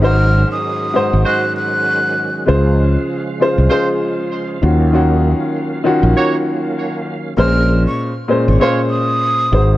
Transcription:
Already playing: fretless electric bass G#1, tonewheel organ D#3 F#3 G#3 C#4 F#4
0.02 upright piano G#2 G#3 F#4 C5, flute F6
0.52 flute D#6
0.94 upright piano G#2 G#3 F#4 C5
1.13 fretless electric bass G#1
1.25 horn section G#3 F#4 C5, flute F#6
1.57 flute F#6
2.46 fretless electric bass C#2, upright piano C#3 G#3 F4 C5, tonewheel organ C#3 F3 F5
3.40 upright piano C#3 G#3 F4 C5
3.58 fretless electric bass C2
3.69 upright piano C#3 G#3 F4 C5, horn section G#3 F4 C5
4.62 fretless electric bass D#2, upright piano D#3 C#4 F4 F#4, tonewheel organ D#3 F#3 A#3 C#4
4.93 upright piano D#3 C#4 F4 F#4
5.84 upright piano D#3 C#4 F4 F#4
6.03 fretless electric bass A#1
6.17 horn section A#3 F#4 C#5
7.37 fretless electric bass A#1, upright piano A#2 G#3 C#4 C5, flute F6
7.87 flute C#6
8.28 upright piano A#2 G#3 C#4 C5
8.48 fretless electric bass G#1
8.60 upright piano A#2 G#3 C#4 C5, horn section G#3 F4 C#5
8.90 flute D#6
9.52 fretless electric bass G#1, upright piano G#2 G#3 F#4 C5

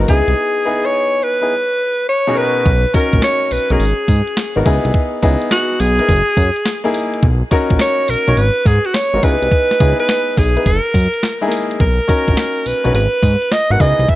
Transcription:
0.00 grand piano F#4
0.08 analog synth bass C#2, grand piano B3 D#4 E4 G#4, alto saxophone G#4, kick, closed hi-hat, tambourine
0.28 analog synth bass C2, closed hi-hat
0.65 grand piano B3 D#4 E4 G#4
0.86 alto saxophone C#5
1.24 alto saxophone B4
1.41 grand piano B3 D#4 E4 G#4
2.09 alto saxophone C#5
2.27 grand piano B2 C#4 D#4 F#4 G#4
2.35 grand piano A#4, alto saxophone B4
2.66 analog synth bass B1, kick, closed hi-hat
2.94 grand piano C#4 D#4 F#4 A#4, alto saxophone A#4, kick, closed hi-hat, tambourine
3.13 analog synth bass A#1, kick, closed hi-hat
3.22 alto saxophone C#5, snare, clap, closed hi-hat, tambourine
3.51 analog synth bass B1, alto saxophone B4, closed hi-hat, tambourine
3.70 analog synth bass B1, grand piano C#4 D#4 F#4 A#4, alto saxophone G#4, closed hi-hat
3.80 analog synth bass G#1, closed hi-hat, tambourine
4.08 analog synth bass G#2, kick, closed hi-hat, tambourine
4.27 closed hi-hat
4.37 snare, clap, closed hi-hat, tambourine
4.56 analog synth bass G#1, grand piano B3 D#4 F#4 A#4
4.65 analog synth bass C#2, grand piano B3 D#4 E4 G#4, kick, closed hi-hat, tambourine
4.85 analog synth bass C2, closed hi-hat
4.94 kick, closed hi-hat
5.22 analog synth bass C#2, grand piano B3 D#4 E4 G#4, kick, closed hi-hat, tambourine
5.42 closed hi-hat
5.51 alto saxophone F#4, snare, clap, closed hi-hat, tambourine
5.80 analog synth bass B1, alto saxophone G#4, closed hi-hat, tambourine
5.98 grand piano B3 D#4 E4 A#4, closed hi-hat
6.09 analog synth bass F#1, kick, closed hi-hat, tambourine
6.37 analog synth bass F#2, kick, closed hi-hat, tambourine
6.56 closed hi-hat
6.66 snare, clap, closed hi-hat, tambourine
6.84 grand piano A#3 D#4 E4 G#4
6.94 closed hi-hat, tambourine
7.14 closed hi-hat
7.23 analog synth bass B1, kick, closed hi-hat
7.51 grand piano C#4 D#4 F#4 A#4, kick, closed hi-hat, tambourine
7.70 analog synth bass A#1, kick, closed hi-hat
7.79 alto saxophone C#5, snare, clap, closed hi-hat, tambourine
8.08 analog synth bass B1, alto saxophone A#4, closed hi-hat, tambourine
8.27 analog synth bass B1, grand piano C#4 D#4 F#4 C#5, closed hi-hat
8.37 analog synth bass G#1, alto saxophone B4, closed hi-hat, tambourine
8.66 analog synth bass G#2, alto saxophone G#4, kick, closed hi-hat, tambourine
8.85 alto saxophone F#4, closed hi-hat
8.94 alto saxophone C#5, snare, clap, closed hi-hat, tambourine
9.13 analog synth bass G#1, grand piano B3 D#4 F#4 A#4
9.23 analog synth bass C#2, grand piano B3 D#4 E4 G#4, alto saxophone B4, kick, closed hi-hat, tambourine
9.42 analog synth bass C2, closed hi-hat
9.52 kick, closed hi-hat
9.71 snare
9.80 analog synth bass C#2, grand piano B3 D#4 E4 G#4, kick, closed hi-hat, tambourine
10.00 alto saxophone B4, closed hi-hat
10.09 snare, clap, closed hi-hat, tambourine
10.37 analog synth bass B1, alto saxophone G#4, kick, open hi-hat, tambourine
10.56 grand piano B3 D#4 E4 B4, closed hi-hat
10.66 analog synth bass F#1, alto saxophone A#4, kick, closed hi-hat, tambourine
10.94 analog synth bass F#2, kick, closed hi-hat, tambourine
11.14 closed hi-hat
11.23 snare, clap, closed hi-hat, tambourine
11.41 grand piano G#3 D#4 E4 G#4
11.48 grand piano A#3, open hi-hat, tambourine
11.71 closed hi-hat
11.80 analog synth bass B1, alto saxophone A#4, kick, closed hi-hat
12.08 grand piano C#4 D#4 F#4 A#4, kick, closed hi-hat, tambourine
12.28 analog synth bass A#1, kick, closed hi-hat
12.37 snare, clap, closed hi-hat, tambourine
12.66 analog synth bass B1, alto saxophone B4, closed hi-hat, tambourine
12.84 analog synth bass B1, grand piano C#4 D#4 F#4 B4, closed hi-hat
12.94 analog synth bass G#1, alto saxophone B4, closed hi-hat, tambourine
13.23 analog synth bass G#2, kick, closed hi-hat, tambourine
13.42 closed hi-hat
13.52 alto saxophone D#5, snare, clap, closed hi-hat, tambourine
13.70 analog synth bass G#1, grand piano B3 D#4 F#4 A#4, alto saxophone F#5
13.79 analog synth bass C#2, grand piano B3 D#4 E4 G#4, alto saxophone D#5, kick, closed hi-hat, tambourine
13.99 analog synth bass C2, closed hi-hat
14.09 alto saxophone E5, kick, closed hi-hat

